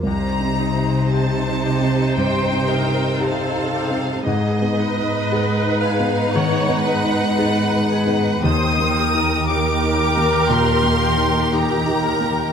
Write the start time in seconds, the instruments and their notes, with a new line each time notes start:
0.03 grand piano C2, harp C3, cello section C3, violin section D#4 C5 A#5
0.40 grand piano C4
0.60 harp D#4
0.75 grand piano D#4
1.11 harp C4, grand piano G4, violin section A5
1.48 grand piano D#4
1.66 harp G4
1.81 grand piano C4
2.17 grand piano G2, harp G3, viola section C5, violin section G5
2.51 grand piano C4
2.68 harp D#4, viola section A#4
2.86 grand piano D#4
3.19 harp C4, grand piano G4, viola section A4, violin section F5
3.55 grand piano D#4
3.75 harp G4
3.91 grand piano C4
4.25 grand piano G#2, cello section G#2, harp G#2, violin section D#4 B4 D#5, viola section G#4
4.62 grand piano B3
4.78 harp D#4, viola section B4
4.97 grand piano D#4
5.31 harp B3, grand piano G#4
5.66 grand piano D#4
5.80 harp G#4, violin section F5
6.00 grand piano B3
6.33 grand piano D#3, harp D#3, viola section C#5, violin section F#5
6.69 grand piano B3
6.84 harp D#4, viola section B4
7.04 grand piano D#4
7.36 harp B3, grand piano G#4, viola section B4
7.71 grand piano D#4
7.89 harp G#4, viola section B4
8.07 grand piano B3
8.43 grand piano D#2, cello section D#2, harp D#3, violin section G4 A#4 D#6, viola section C5
8.79 grand piano A#3
8.97 harp G4, viola section A#4
9.14 grand piano D#4
9.48 harp D#4, grand piano G4, viola section A#4, violin section D6
9.83 grand piano D#4
10.00 harp A#4
10.17 grand piano A#3
10.49 grand piano A#2, harp A#3, violin section C6
10.83 grand piano A#3
11.03 harp G4
11.17 grand piano D#4
11.51 harp D#4, grand piano G4, viola section G4, violin section A#5
11.86 grand piano D#4
12.04 viola section A#4, harp A#4
12.21 grand piano A#3